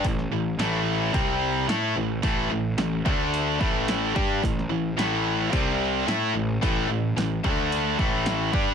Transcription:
<<
  \new Staff \with { instrumentName = "Distorted electric guitar" } { \clef bass \time 4/4 \key a \minor \tempo 4 = 110 <a, e>8 <a, e>8 <a, e a>4 <c g c'>4 <a e' a'>8 <a, e>8 | <a, e a>8 <a, e>8 <a, e>8 <d a d'>4 <a, e a>4 <g d' g'>8 | <a, e>8 <a, e>8 <a, e a>4 <c g c'>4 <a e' a'>8 <a, e>8 | <a, e a>8 <a, e>8 <a, e>8 <d a d'>4 <a, e a>4 <g d' g'>8 | }
  \new Staff \with { instrumentName = "Overdriven electric guitar" } { \clef bass \time 4/4 \key a \minor <a, e>8 <a, e>8 <a, e a>4 <c g c'>4 <a e' a'>8 <a, e>8 | <a, e a>8 <a, e>8 <a, e>8 <d a d'>4 <a, e a>4 <g d' g'>8 | <a, e>8 <a, e>8 <a, e a>4 <c g c'>4 <a e' a'>8 <a, e>8 | <a, e a>8 <a, e>8 <a, e>8 <d a d'>4 <a, e a>4 <g d' g'>8 | }
  \new Staff \with { instrumentName = "Picked electric bass" } { \clef bass \time 4/4 \key a \minor a,,8 a,,8 a,,4 c,4 a,8 a,,8 | a,,8 a,,8 a,,8 d,4 a,,4 g,8 | a,,8 a,,8 a,,4 c,4 a,8 a,,8 | a,,8 a,,8 a,,8 d,4 a,,4 g,8 | }
  \new DrumStaff \with { instrumentName = "Drums" } \drummode { \time 4/4 <hho bd>16 sn8. <hho sn>4 <hho bd>4 <hho sn>4 | <hho bd>4 <hho sn>8 bd8 hho8 bd8 <hho sn>8 bd8 | <hho bd>16 sn8. <hho sn>4 <hho bd>4 <hho sn>4 | <hho bd>4 <hho sn>8 bd8 hho8 bd8 <hho sn>8 bd8 | }
>>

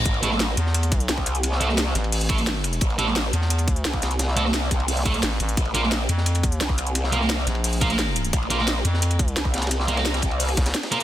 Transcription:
<<
  \new Staff \with { instrumentName = "Distorted electric guitar" } { \time 4/4 \key a \phrygian \tempo 4 = 174 r8 <a e' a'>8 r2. | r8 <a e' a'>8 r4. <a e' a'>8 r4 | r8 <a e' a'>8 r2. | r8 <a e' a'>8 r4. <a e' a'>8 r4 |
r8 <bes f' bes'>8 r2. | r8 <bes f' bes'>8 r4. <bes f' bes'>8 r4 | r8 <bes f' bes'>8 r2. | r8 <bes f' bes'>8 r2 r8 <bes f' bes'>8 | }
  \new Staff \with { instrumentName = "FM bass" } { \clef bass \time 4/4 \key a \phrygian r4. e,4. r4 | r4. a,,2~ a,,8 | r4. e,4. r4 | r2. a,,8 a,,8 |
r4. f,4. r4 | r4. bes,,2~ bes,,8 | r4. f,4. r4 | r2 r8 c,8 r4 | }
  \new Staff \with { instrumentName = "Wobble bass" } { \clef bass \time 4/4 \key a \phrygian a,,8 a,,4 r4. c,4~ | c,4. r2 r8 | a,,8 a,,4 r4. c,4~ | c,4. c,4. r4 |
bes,,8 bes,,4 r4. c,4~ | c,4. r2 r8 | bes,,8 bes,,4 r4. c,4~ | c,4. c,4 r4. | }
  \new DrumStaff \with { instrumentName = "Drums" } \drummode { \time 4/4 <hh bd cymr>16 cymr16 <hh cymr sn>16 sn16 <hh cymr sn>8 <hh cymr>16 sn16 <hh cymr>16 <hh cymr>16 <hh bd cymr>16 hh16 <hh cymr sn>16 <bd ss>16 <hh cymr>16 hh16 | <hh cymr>16 sn16 <hh cymr sn>16 <ss sn>16 <hh cymr sn>16 sn16 <hh cymr sn>16 cymr16 <hh hho>16 hh16 <hh bd cymr>16 hh16 <hh cymr sn>8 <hh cymr>16 hh16 | <hh bd cymr>16 cymr16 <hh cymr sn>16 sn16 <hh cymr sn>8 <hh cymr>16 sn16 <hh cymr>16 <hh cymr>16 <hh bd cymr>16 hh16 <hh cymr sn>16 <bd ss>16 <hh cymr sn>16 hh16 | <hh cymr sn>16 sn16 <hh cymr sn>16 <ss sn>16 <hh cymr sn>16 sn16 <hh bd cymr sn>16 cymr16 <hh hho>16 hh16 <hh bd cymr>16 hh16 <hh cymr sn>8 <hh cymr>16 hh16 |
<hh bd cymr>16 cymr16 <hh cymr sn>16 sn16 <hh cymr sn>8 <hh cymr>16 sn16 <hh cymr>16 <hh cymr>16 <hh bd cymr>16 hh16 <hh cymr sn>16 <bd ss>16 <hh cymr>16 hh16 | <hh cymr>16 sn16 <hh cymr sn>16 <ss sn>16 <hh cymr sn>16 sn16 <hh cymr sn>16 cymr16 <hh hho>16 hh16 <hh bd cymr>16 hh16 <hh cymr sn>8 <hh cymr>16 hh16 | <hh bd cymr>16 cymr16 <hh cymr sn>16 sn16 <hh cymr sn>8 <hh cymr>16 sn16 <hh cymr>16 <hh cymr>16 <hh bd cymr>16 hh16 <hh cymr sn>16 <bd ss>16 <hh cymr sn>32 <cymr sn>32 <hh cymr sn>32 <cymr sn>32 | <hh cymr>16 sn16 <hh cymr sn>16 <cymr ss sn>16 <hh cymr sn>16 <hh cymr sn>16 <hh bd cymr sn>16 cymr16 <hh hho>16 <hh ss>16 <hh bd cymr sn>16 <hh cymr sn>16 <hh cymr sn>16 <cymr sn>16 <hh cymr sn>8 | }
>>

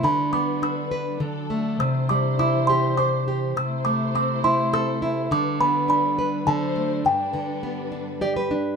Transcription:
<<
  \new Staff \with { instrumentName = "Music box" } { \time 3/4 \key g \major \tempo 4 = 103 b''8 d'''8 e'''4. r8 | e'''8 d'''8 d'''8 c'''8 d'''4 | e'''8 d'''8 d'''8 c'''8 e'''4 | d'''8 b''8 b''4 a''4 |
g''2 r4 | }
  \new Staff \with { instrumentName = "String section" } { \time 3/4 \key g \major << { <d g b'>2 <fis a'>4 | <e c''>2. | <c a c''>2. | <d g b'>2 <fis c''>4 |
<g b'>2. | } \\ { d'2.~ | d'2. | e'2. | d'2 d'4~ |
d'2. | } >> }
  \new Staff \with { instrumentName = "Nylon-string guitar" } { \time 3/4 \key g \major << { r2. | r2. | r2. | r2. |
r2 d''16 b'8. | } \\ { d8 b8 d'8 b'8 d8 a8 | c8 g8 e'8 g'8 c''8 g'8 | c8 a8 c'8 e'8 a'8 e'8 | d8 b8 d'8 b'8 d8 a8 |
g,8 d8 b8 d'8 g'8 d'8 | } >> }
>>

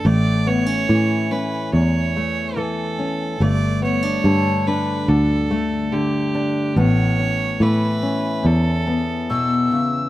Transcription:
<<
  \new Staff \with { instrumentName = "Tin whistle" } { \time 4/4 \key a \mixolydian \tempo 4 = 71 r1 | r1 | r2. e'''4 | }
  \new Staff \with { instrumentName = "Fiddle" } { \time 4/4 \key a \mixolydian d''8 cis''4 b'8 cis''4 a'4 | d''8 cis''4 b'8 a'4 g'4 | cis''4 b'4 a'4. r8 | }
  \new Staff \with { instrumentName = "Steel-string acoustic guitar" } { \time 4/4 \key a \mixolydian << { a8 b16 cis'16 e'8 cis'4 a4 cis'8 | a8 b16 d'16 a'8 d'4 a4 d'8 | b8 cis'8 e'8 cis'4 b4. | } \\ { a,4 e4 e,4 e4 | g,4 d4 d4 d4 | a,4 e4 e,4 b,8 cis8 | } >> }
  \new Staff \with { instrumentName = "Fingered electric bass" } { \clef bass \time 4/4 \key a \mixolydian a,,4 a,4 e,2 | g,,4 g,4 d,2 | a,,4 a,4 e,2 | }
>>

